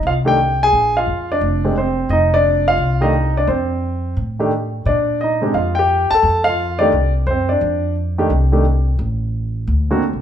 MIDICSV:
0, 0, Header, 1, 4, 480
1, 0, Start_track
1, 0, Tempo, 344828
1, 1006, Time_signature, 4, 2, 24, 8
1, 14222, End_track
2, 0, Start_track
2, 0, Title_t, "Grand piano"
2, 0, Program_c, 0, 0
2, 95, Note_on_c, 0, 77, 78
2, 103, Note_on_c, 0, 65, 63
2, 164, Note_off_c, 0, 77, 0
2, 172, Note_off_c, 0, 65, 0
2, 348, Note_on_c, 0, 51, 55
2, 359, Note_on_c, 0, 57, 54
2, 359, Note_on_c, 0, 62, 52
2, 364, Note_on_c, 0, 67, 64
2, 384, Note_on_c, 0, 79, 84
2, 505, Note_off_c, 0, 51, 0
2, 510, Note_off_c, 0, 57, 0
2, 510, Note_off_c, 0, 62, 0
2, 513, Note_off_c, 0, 67, 0
2, 866, Note_off_c, 0, 79, 0
2, 878, Note_on_c, 0, 80, 102
2, 893, Note_on_c, 0, 68, 71
2, 1314, Note_off_c, 0, 68, 0
2, 1347, Note_on_c, 0, 77, 81
2, 1352, Note_off_c, 0, 80, 0
2, 1364, Note_on_c, 0, 65, 63
2, 1780, Note_off_c, 0, 77, 0
2, 1789, Note_off_c, 0, 65, 0
2, 1832, Note_on_c, 0, 74, 81
2, 1846, Note_on_c, 0, 62, 62
2, 2287, Note_on_c, 0, 50, 47
2, 2290, Note_on_c, 0, 56, 47
2, 2290, Note_on_c, 0, 60, 46
2, 2302, Note_on_c, 0, 67, 56
2, 2419, Note_off_c, 0, 74, 0
2, 2426, Note_off_c, 0, 62, 0
2, 2434, Note_off_c, 0, 50, 0
2, 2435, Note_off_c, 0, 56, 0
2, 2436, Note_off_c, 0, 60, 0
2, 2442, Note_off_c, 0, 67, 0
2, 2472, Note_on_c, 0, 72, 65
2, 2493, Note_on_c, 0, 60, 57
2, 2918, Note_off_c, 0, 60, 0
2, 2929, Note_on_c, 0, 75, 78
2, 2953, Note_off_c, 0, 72, 0
2, 2961, Note_on_c, 0, 63, 64
2, 3235, Note_off_c, 0, 63, 0
2, 3249, Note_off_c, 0, 75, 0
2, 3255, Note_on_c, 0, 74, 85
2, 3282, Note_on_c, 0, 62, 59
2, 3693, Note_off_c, 0, 74, 0
2, 3708, Note_off_c, 0, 62, 0
2, 3727, Note_on_c, 0, 77, 90
2, 3752, Note_on_c, 0, 65, 60
2, 4182, Note_off_c, 0, 65, 0
2, 4190, Note_on_c, 0, 51, 53
2, 4191, Note_on_c, 0, 57, 48
2, 4197, Note_on_c, 0, 62, 47
2, 4200, Note_on_c, 0, 67, 60
2, 4201, Note_on_c, 0, 75, 77
2, 4217, Note_off_c, 0, 77, 0
2, 4222, Note_on_c, 0, 63, 63
2, 4345, Note_off_c, 0, 51, 0
2, 4346, Note_off_c, 0, 57, 0
2, 4349, Note_off_c, 0, 62, 0
2, 4350, Note_off_c, 0, 67, 0
2, 4646, Note_off_c, 0, 75, 0
2, 4657, Note_off_c, 0, 63, 0
2, 4696, Note_on_c, 0, 74, 75
2, 4715, Note_on_c, 0, 62, 54
2, 4844, Note_on_c, 0, 72, 63
2, 4854, Note_off_c, 0, 62, 0
2, 4860, Note_off_c, 0, 74, 0
2, 4871, Note_on_c, 0, 60, 51
2, 5749, Note_off_c, 0, 72, 0
2, 5763, Note_off_c, 0, 60, 0
2, 6116, Note_on_c, 0, 51, 54
2, 6125, Note_on_c, 0, 62, 52
2, 6127, Note_on_c, 0, 57, 52
2, 6127, Note_on_c, 0, 67, 65
2, 6268, Note_off_c, 0, 51, 0
2, 6272, Note_off_c, 0, 62, 0
2, 6273, Note_off_c, 0, 57, 0
2, 6273, Note_off_c, 0, 67, 0
2, 6771, Note_on_c, 0, 74, 73
2, 6803, Note_on_c, 0, 62, 59
2, 7214, Note_off_c, 0, 74, 0
2, 7231, Note_off_c, 0, 62, 0
2, 7250, Note_on_c, 0, 75, 69
2, 7293, Note_on_c, 0, 63, 54
2, 7537, Note_on_c, 0, 50, 48
2, 7548, Note_on_c, 0, 60, 45
2, 7550, Note_on_c, 0, 56, 47
2, 7557, Note_on_c, 0, 67, 57
2, 7698, Note_off_c, 0, 50, 0
2, 7703, Note_off_c, 0, 60, 0
2, 7704, Note_off_c, 0, 56, 0
2, 7708, Note_off_c, 0, 67, 0
2, 7716, Note_on_c, 0, 77, 68
2, 7717, Note_off_c, 0, 63, 0
2, 7741, Note_off_c, 0, 75, 0
2, 7766, Note_on_c, 0, 65, 57
2, 8004, Note_on_c, 0, 79, 83
2, 8010, Note_off_c, 0, 77, 0
2, 8037, Note_off_c, 0, 65, 0
2, 8060, Note_on_c, 0, 67, 69
2, 8495, Note_off_c, 0, 67, 0
2, 8499, Note_on_c, 0, 81, 104
2, 8515, Note_off_c, 0, 79, 0
2, 8554, Note_on_c, 0, 69, 69
2, 8953, Note_off_c, 0, 81, 0
2, 8968, Note_on_c, 0, 77, 96
2, 8983, Note_off_c, 0, 69, 0
2, 9034, Note_on_c, 0, 65, 62
2, 9447, Note_on_c, 0, 74, 88
2, 9462, Note_off_c, 0, 65, 0
2, 9466, Note_on_c, 0, 51, 55
2, 9472, Note_on_c, 0, 57, 53
2, 9474, Note_on_c, 0, 62, 55
2, 9477, Note_off_c, 0, 77, 0
2, 9482, Note_on_c, 0, 67, 64
2, 9622, Note_off_c, 0, 51, 0
2, 9625, Note_off_c, 0, 57, 0
2, 9626, Note_off_c, 0, 62, 0
2, 9630, Note_off_c, 0, 67, 0
2, 9907, Note_off_c, 0, 74, 0
2, 10116, Note_on_c, 0, 72, 71
2, 10170, Note_on_c, 0, 60, 55
2, 10425, Note_on_c, 0, 74, 67
2, 10438, Note_off_c, 0, 60, 0
2, 10441, Note_off_c, 0, 72, 0
2, 10473, Note_on_c, 0, 62, 55
2, 11032, Note_off_c, 0, 74, 0
2, 11058, Note_off_c, 0, 62, 0
2, 11391, Note_on_c, 0, 51, 60
2, 11393, Note_on_c, 0, 57, 53
2, 11397, Note_on_c, 0, 62, 51
2, 11403, Note_on_c, 0, 67, 67
2, 11544, Note_off_c, 0, 51, 0
2, 11546, Note_off_c, 0, 57, 0
2, 11547, Note_off_c, 0, 62, 0
2, 11551, Note_off_c, 0, 67, 0
2, 11861, Note_on_c, 0, 51, 52
2, 11866, Note_on_c, 0, 57, 48
2, 11872, Note_on_c, 0, 62, 45
2, 11875, Note_on_c, 0, 67, 57
2, 12019, Note_off_c, 0, 51, 0
2, 12022, Note_off_c, 0, 57, 0
2, 12025, Note_off_c, 0, 62, 0
2, 12026, Note_off_c, 0, 67, 0
2, 13789, Note_on_c, 0, 58, 57
2, 13791, Note_on_c, 0, 50, 58
2, 13794, Note_on_c, 0, 60, 54
2, 13799, Note_on_c, 0, 66, 66
2, 13943, Note_off_c, 0, 58, 0
2, 13944, Note_off_c, 0, 50, 0
2, 13946, Note_off_c, 0, 60, 0
2, 13949, Note_off_c, 0, 66, 0
2, 14222, End_track
3, 0, Start_track
3, 0, Title_t, "Upright bass"
3, 0, Program_c, 1, 32
3, 40, Note_on_c, 1, 36, 72
3, 955, Note_off_c, 1, 36, 0
3, 1010, Note_on_c, 1, 34, 72
3, 1455, Note_off_c, 1, 34, 0
3, 1481, Note_on_c, 1, 41, 58
3, 1930, Note_off_c, 1, 41, 0
3, 1964, Note_on_c, 1, 29, 70
3, 2877, Note_off_c, 1, 29, 0
3, 2912, Note_on_c, 1, 29, 74
3, 3831, Note_off_c, 1, 29, 0
3, 3866, Note_on_c, 1, 36, 74
3, 4787, Note_off_c, 1, 36, 0
3, 4835, Note_on_c, 1, 41, 75
3, 5752, Note_off_c, 1, 41, 0
3, 5799, Note_on_c, 1, 45, 71
3, 6714, Note_off_c, 1, 45, 0
3, 6757, Note_on_c, 1, 46, 72
3, 7672, Note_off_c, 1, 46, 0
3, 7713, Note_on_c, 1, 41, 72
3, 8455, Note_off_c, 1, 41, 0
3, 8670, Note_on_c, 1, 41, 77
3, 9589, Note_off_c, 1, 41, 0
3, 9635, Note_on_c, 1, 36, 70
3, 10085, Note_off_c, 1, 36, 0
3, 10114, Note_on_c, 1, 42, 69
3, 10565, Note_off_c, 1, 42, 0
3, 10594, Note_on_c, 1, 41, 76
3, 11511, Note_off_c, 1, 41, 0
3, 11551, Note_on_c, 1, 36, 76
3, 12469, Note_off_c, 1, 36, 0
3, 12512, Note_on_c, 1, 33, 77
3, 13429, Note_off_c, 1, 33, 0
3, 13466, Note_on_c, 1, 38, 74
3, 14069, Note_off_c, 1, 38, 0
3, 14103, Note_on_c, 1, 36, 51
3, 14222, Note_off_c, 1, 36, 0
3, 14222, End_track
4, 0, Start_track
4, 0, Title_t, "Muted upright bass strokes"
4, 8510, Note_on_c, 9, 29, 32
4, 8649, Note_off_c, 9, 29, 0
4, 14222, End_track
0, 0, End_of_file